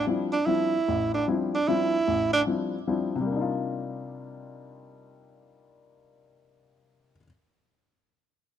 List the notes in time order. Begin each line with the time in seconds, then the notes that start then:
0.07 F3 G3 C4 D4 E4
0.33 D4
0.46 F3 G3 C4 D4 E4
0.88 A1
1.14 D4
1.28 F3 G3 C4 D4 E4
1.55 D4
1.68 F3 G3 C4 D4 E4
2.08 A1
2.33 D4
2.47 F3 G3 C4 D4 E4
2.87 F3 G3 C4 D4 E4
3.16 C3
3.21 G3
3.26 A#3
3.31 D4
3.36 D#4
3.41 F4